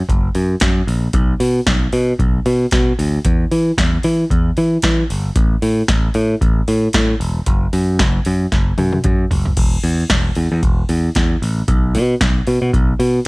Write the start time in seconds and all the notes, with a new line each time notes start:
0.09 F#1, kick, closed hi-hat
0.35 F#2, open hi-hat
0.60 F#2, kick, snare, closed hi-hat
0.87 A#1, open hi-hat
1.13 B1, kick, closed hi-hat
1.40 B2, open hi-hat
1.67 B1, kick, snare, closed hi-hat
1.93 B2, open hi-hat
2.19 B1, kick, closed hi-hat
2.46 B2, open hi-hat
2.71 B2, kick, snare, closed hi-hat
2.99 D2, open hi-hat
3.25 E2, kick, closed hi-hat
3.52 E3, open hi-hat
3.78 E2, kick, snare, closed hi-hat
4.03 E3, open hi-hat
4.30 E2, kick, closed hi-hat
4.57 E3, open hi-hat
4.82 E3, kick, snare, closed hi-hat
5.10 G1, open hi-hat
5.36 A1, kick, closed hi-hat
5.62 A2, open hi-hat
5.88 A1, kick, snare, closed hi-hat
6.14 A2, open hi-hat
6.41 A1, kick, closed hi-hat
6.68 A2, open hi-hat
6.93 A2, kick, snare, closed hi-hat
7.20 E1, open hi-hat
7.46 F#1, kick, closed hi-hat
7.73 F#2, open hi-hat
7.99 F#1, kick, snare, closed hi-hat
8.25 F#2, open hi-hat
8.52 F#1, kick, snare, closed hi-hat
8.78 F#2, open hi-hat, high tom
8.93 high tom
9.04 F#2, kick, closed hi-hat, mid tom
9.31 F#1, floor tom, open hi-hat
9.46 floor tom
9.57 E1, kick, closed hi-hat, crash
9.83 E2, open hi-hat
10.10 E1, kick, snare, closed hi-hat
10.35 E2, open hi-hat
10.52 E2
10.63 E1, kick, closed hi-hat
10.89 E2, open hi-hat
11.15 E2, kick, snare, closed hi-hat
11.42 A1, open hi-hat
11.68 B1, kick, closed hi-hat
11.95 B2, open hi-hat
12.21 B1, kick, snare, closed hi-hat
12.47 B2, open hi-hat
12.62 B2
12.73 B1, kick, closed hi-hat
13.00 B2, open hi-hat